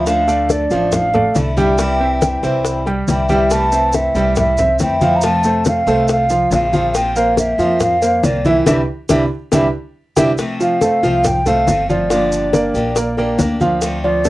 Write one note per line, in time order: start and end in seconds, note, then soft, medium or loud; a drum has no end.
0.00 0.65 D2 medium
0.00 0.20 F3 medium
0.00 0.20 F5 medium
0.06 0.70 D3 medium
0.06 0.70 F3 medium
0.06 0.70 A3 medium
0.06 0.70 D4 medium
0.06 0.53 F5 loud
0.06 high bongo medium
0.06 high conga soft
0.06 maracas medium
0.28 0.63 A3 medium
0.28 0.63 A4 medium
0.28 0.63 D5 medium
0.28 high conga soft
0.28 maracas medium
0.49 0.95 D5 loud
0.49 high bongo medium
0.49 high conga medium
0.49 maracas medium
0.70 1.31 A1 loud
0.70 1.06 F3 medium
0.70 1.12 F3 medium
0.70 1.13 A3 medium
0.70 1.13 D4 medium
0.70 1.06 F5 medium
0.70 high bongo soft
0.70 maracas soft
0.92 1.36 F5 loud
0.92 high bongo medium
0.92 high conga soft
0.92 low conga medium
0.92 maracas medium
1.13 1.49 A3 medium
1.13 1.49 A4 medium
1.13 1.50 D5 medium
1.13 muted steel-string acoustic guitar stroke medium
1.13 high bongo soft
1.13 high conga soft
1.13 low conga medium
1.34 2.37 C2 medium
1.34 1.56 F3 soft
1.34 1.56 A3 soft
1.34 1.56 D4 medium
1.34 1.55 E4 medium
1.34 high bongo soft
1.34 low bongo medium
1.34 high conga medium
1.34 maracas medium
1.57 1.78 F3 medium
1.57 1.75 G3 medium
1.57 1.78 A3 medium
1.57 1.78 D4 medium
1.57 1.77 E4 medium
1.57 1.75 G4 medium
1.57 1.75 G5 medium
1.57 2.83 G5 loud
1.57 high conga medium
1.57 maracas soft
1.77 2.86 C3 medium
1.77 2.44 E3 medium
1.77 2.43 G3 medium
1.77 1.96 G3 medium
1.77 2.43 C4 medium
1.77 2.42 E4 medium
1.77 1.96 G4 medium
1.77 1.96 G5 medium
1.77 high bongo medium
1.77 high conga soft
1.77 maracas medium
2.00 2.35 C4 medium
2.00 2.36 C5 medium
2.00 2.36 E5 medium
2.00 high conga soft
2.22 high bongo medium
2.22 high conga medium
2.22 maracas medium
2.43 3.03 C2 medium
2.43 2.86 E3 medium
2.43 2.85 G3 medium
2.43 2.78 C4 medium
2.43 2.85 C4 medium
2.43 2.85 E4 medium
2.43 2.78 C5 medium
2.43 2.79 E5 medium
2.43 high bongo soft
2.43 high conga soft
2.43 maracas soft
2.65 high bongo medium
2.65 high conga soft
2.65 maracas medium
2.86 3.22 G3 medium
2.86 3.22 G4 medium
2.86 3.22 G5 medium
2.86 muted steel-string acoustic guitar stroke medium
2.86 high bongo soft
2.86 high conga soft
3.07 4.09 C2 medium
3.07 3.28 E3 soft
3.07 3.29 G3 medium
3.07 3.29 C4 soft
3.07 3.29 E4 medium
3.07 3.53 G5 medium
3.07 high bongo soft
3.07 low bongo medium
3.07 high conga medium
3.07 maracas medium
3.29 3.50 E3 medium
3.29 3.65 G3 loud
3.29 3.51 G3 medium
3.29 3.51 C4 medium
3.29 3.50 E4 medium
3.29 3.65 G4 medium
3.29 3.65 G5 medium
3.29 high conga medium
3.29 maracas soft
3.50 4.15 C3 medium
3.50 4.15 E3 medium
3.50 4.16 A3 medium
3.50 4.16 C4 medium
3.50 4.14 E4 medium
3.50 3.96 A5 loud
3.50 high bongo medium
3.50 high conga soft
3.50 maracas medium
3.72 4.07 C4 medium
3.72 4.08 C5 medium
3.72 4.08 E5 medium
3.72 high conga soft
3.72 maracas medium
3.93 4.37 E5 loud
3.93 high bongo medium
3.93 high conga medium
3.93 maracas medium
4.15 4.75 C2 medium
4.15 4.57 E3 medium
4.15 4.51 G3 medium
4.15 4.57 A3 medium
4.15 4.58 C4 medium
4.15 4.57 E4 medium
4.15 4.51 G4 medium
4.15 4.51 G5 medium
4.15 high bongo soft
4.15 maracas soft
4.36 4.78 E5 loud
4.36 high bongo medium
4.36 high conga soft
4.36 low conga medium
4.36 maracas medium
4.57 4.94 C4 medium
4.57 4.94 C5 medium
4.57 4.94 E5 medium
4.57 muted steel-string acoustic guitar stroke medium
4.57 high bongo soft
4.57 high conga soft
4.57 low conga medium
4.57 maracas medium
4.79 5.81 F2 medium
4.79 5.00 E3 soft
4.79 5.01 A3 medium
4.79 5.00 C4 medium
4.79 5.00 E4 soft
4.79 5.18 G5 medium
4.79 high bongo soft
4.79 low bongo medium
4.79 high conga medium
4.79 maracas medium
5.01 5.22 E3 medium
5.01 5.19 F3 medium
5.01 5.22 A3 medium
5.01 5.22 C4 medium
5.01 5.22 E4 medium
5.01 5.19 F4 loud
5.01 5.19 F5 medium
5.01 high conga medium
5.01 maracas soft
5.16 5.26 A#5 medium
5.21 5.86 C3 medium
5.21 5.88 F3 medium
5.21 5.41 F3 medium
5.21 5.87 A3 medium
5.21 5.87 C4 medium
5.21 5.41 F4 medium
5.21 5.86 F4 medium
5.21 5.41 F5 medium
5.21 5.67 A5 loud
5.21 high bongo medium
5.21 high conga soft
5.21 maracas medium
5.43 5.80 A3 medium
5.43 5.80 A4 medium
5.43 5.80 C5 medium
5.43 high conga soft
5.43 maracas medium
5.65 6.07 F5 loud
5.65 high bongo medium
5.65 high conga medium
5.65 maracas medium
5.86 6.47 C2 loud
5.86 6.29 F3 medium
5.86 6.23 A3 medium
5.86 6.29 A3 medium
5.86 6.29 C4 medium
5.86 6.29 F4 medium
5.86 6.23 A4 medium
5.86 6.23 C5 medium
5.86 high bongo soft
5.86 high conga soft
5.86 maracas soft
6.08 6.50 F5 loud
6.08 high bongo medium
6.08 high conga soft
6.08 maracas medium
6.29 6.65 F3 medium
6.29 6.66 F4 medium
6.29 6.66 F5 medium
6.29 muted steel-string acoustic guitar stroke medium
6.29 high bongo soft
6.29 high conga soft
6.29 maracas medium
6.51 7.53 A#1 medium
6.51 6.72 F3 soft
6.51 6.72 A3 medium
6.51 6.73 C4 medium
6.51 6.72 F4 medium
6.51 6.97 F5 loud
6.51 high bongo soft
6.51 low bongo medium
6.51 high conga medium
6.51 maracas medium
6.73 7.08 F3 medium
6.73 6.93 F3 medium
6.73 6.95 A3 medium
6.73 6.94 C4 medium
6.73 6.94 F4 medium
6.73 7.09 F4 medium
6.73 7.09 F5 medium
6.73 high conga medium
6.73 maracas soft
6.94 7.58 F3 medium
6.94 7.58 A#3 medium
6.94 7.61 C4 medium
6.94 7.59 F4 medium
6.94 7.18 G5 loud
6.94 high bongo medium
6.94 high conga soft
6.94 maracas medium
7.16 7.51 A#3 medium
7.16 7.52 A#4 medium
7.16 7.52 C5 medium
7.16 7.38 F5 loud
7.16 high conga soft
7.16 maracas medium
7.37 7.83 E5 loud
7.37 high bongo medium
7.37 high conga medium
7.37 maracas medium
7.58 8.19 F2 loud
7.58 7.94 F3 medium
7.58 8.02 C4 medium
7.58 7.95 F4 medium
7.58 8.02 F4 medium
7.58 7.95 F5 medium
7.58 high bongo soft
7.58 maracas soft
7.62 8.02 A#3 medium
7.80 8.27 F5 loud
7.80 high bongo medium
7.80 high conga soft
7.80 low conga medium
7.80 maracas medium
8.02 8.37 A#3 medium
8.02 8.38 A#4 medium
8.02 8.38 C5 medium
8.02 muted steel-string acoustic guitar stroke medium
8.02 high bongo soft
8.02 high conga soft
8.02 maracas medium
8.23 8.63 C2 medium
8.23 8.44 F3 soft
8.23 8.45 A#3 medium
8.23 8.45 C4 medium
8.23 8.44 F4 medium
8.23 8.49 D5 medium
8.23 high bongo soft
8.23 low bongo medium
8.23 high conga medium
8.23 maracas medium
8.45 8.63 E3 medium
8.45 8.67 A#3 medium
8.45 8.65 C4 medium
8.45 8.63 E4 medium
8.45 8.66 F4 medium
8.45 8.63 E5 medium
8.45 8.67 E5 medium
8.45 high conga medium
8.45 maracas soft
8.66 8.83 C2 loud
8.66 8.80 E3 medium
8.66 8.80 G3 medium
8.66 8.80 C4 loud
8.66 8.81 D4 medium
8.66 8.81 E4 medium
8.66 8.81 G4 medium
8.66 8.81 E5 loud
8.66 high bongo loud
8.66 high conga loud
8.66 maracas loud
9.09 9.26 C2 loud
9.09 9.24 E3 medium
9.09 9.23 G3 medium
9.09 9.23 C4 medium
9.09 9.24 D4 loud
9.09 9.24 E4 medium
9.09 9.24 G4 medium
9.09 9.24 E5 medium
9.09 high bongo loud
9.09 high conga loud
9.09 maracas loud
9.52 9.68 C2 medium
9.52 9.66 E3 medium
9.52 9.66 G3 medium
9.52 9.66 C4 medium
9.52 9.67 D4 loud
9.52 9.66 E4 medium
9.52 9.66 G4 medium
9.52 9.67 E5 loud
9.52 high bongo loud
9.52 high conga loud
9.52 maracas loud
10.16 10.33 C2 medium
10.16 10.31 E3 medium
10.16 10.31 G3 loud
10.16 10.31 C4 loud
10.16 10.31 D4 medium
10.16 10.31 E4 medium
10.16 10.31 G4 loud
10.16 10.31 E5 loud
10.16 high bongo medium
10.16 high conga medium
10.16 maracas loud
10.38 11.02 C3 medium
10.38 11.04 F3 medium
10.38 11.03 A3 medium
10.38 11.03 C4 medium
10.38 11.03 F4 medium
10.38 high bongo medium
10.38 high conga soft
10.38 maracas medium
10.60 10.78 F3 medium
10.60 10.78 F4 medium
10.60 10.78 F5 medium
10.60 11.28 F5 loud
10.60 high conga soft
10.60 maracas medium
10.81 11.00 A3 medium
10.81 11.00 A4 medium
10.81 11.00 C5 medium
10.81 high bongo medium
10.81 high conga medium
10.81 maracas medium
11.03 11.63 C2 medium
11.03 11.38 F3 medium
11.03 11.24 F3 medium
11.03 11.24 A3 medium
11.03 11.24 C4 medium
11.03 11.38 F4 medium
11.03 11.24 F4 medium
11.03 11.39 F5 medium
11.03 high bongo soft
11.03 maracas soft
11.24 11.49 G5 loud
11.24 muted steel-string acoustic guitar stroke medium
11.24 high bongo medium
11.24 high conga soft
11.24 low conga medium
11.24 maracas medium
11.46 11.67 F3 medium
11.46 11.82 A3 medium
11.46 11.67 A3 medium
11.46 11.67 C4 medium
11.46 11.67 F4 medium
11.46 11.82 A4 medium
11.46 11.82 C5 medium
11.46 11.89 F5 loud
11.46 high bongo soft
11.46 high conga soft
11.46 low conga medium
11.46 maracas medium
11.67 12.69 G1 loud
11.67 12.10 F3 soft
11.67 12.10 A3 medium
11.67 12.11 C4 medium
11.67 12.11 F4 medium
11.67 high bongo soft
11.67 low bongo medium
11.67 high conga medium
11.67 maracas medium
11.90 12.07 F3 medium
11.90 12.07 F4 medium
11.90 13.14 D5 medium
11.90 12.07 F5 medium
11.90 high conga medium
11.90 maracas soft
12.10 12.74 D3 medium
12.10 12.46 F3 medium
12.10 12.76 F3 medium
12.10 12.75 A#3 medium
12.10 12.75 D4 medium
12.10 12.46 F4 medium
12.10 12.74 G4 medium
12.10 12.46 F5 medium
12.10 high bongo medium
12.10 high conga soft
12.10 maracas medium
12.32 high conga soft
12.32 maracas medium
12.53 12.89 A#3 medium
12.53 12.89 A#4 medium
12.53 12.89 D5 medium
12.53 high bongo medium
12.53 high conga medium
12.53 maracas medium
12.74 13.35 A#1 medium
12.74 12.96 F3 medium
12.74 12.96 A#3 medium
12.74 12.96 D4 medium
12.74 12.96 G4 medium
12.74 high bongo soft
12.74 high conga soft
12.74 maracas soft
12.96 13.14 A#3 medium
12.96 13.14 A#4 medium
12.96 13.15 D5 medium
12.96 muted steel-string acoustic guitar stroke medium
12.96 high bongo medium
12.96 high conga soft
12.96 maracas medium
13.17 13.38 F3 medium
13.17 13.53 A#3 medium
13.17 13.39 A#3 medium
13.17 13.39 D4 medium
13.17 13.39 G4 medium
13.17 13.53 A#4 medium
13.17 13.54 D5 medium
13.17 high bongo soft
13.17 high conga soft
13.38 14.29 D2 medium
13.38 13.82 F3 soft
13.38 13.82 A#3 medium
13.38 13.82 D4 medium
13.38 13.83 G4 medium
13.38 high bongo soft
13.38 low bongo medium
13.38 high conga medium
13.38 maracas medium
13.60 13.96 F3 medium
13.60 13.96 F4 loud
13.60 13.96 F5 medium
13.60 high conga medium
13.60 maracas soft
13.81 14.29 D3 medium
13.81 14.29 A3 medium
13.81 14.29 C4 medium
13.81 14.29 F4 medium
13.81 high bongo medium
13.81 high conga soft
13.81 maracas medium
14.04 14.22 F3 medium
14.04 14.22 F4 medium
14.04 14.29 D5 loud
14.04 14.22 F5 medium
14.04 high conga soft
14.24 14.29 A3 medium
14.24 14.29 A4 medium
14.24 14.29 C5 medium
14.24 high bongo medium
14.24 maracas medium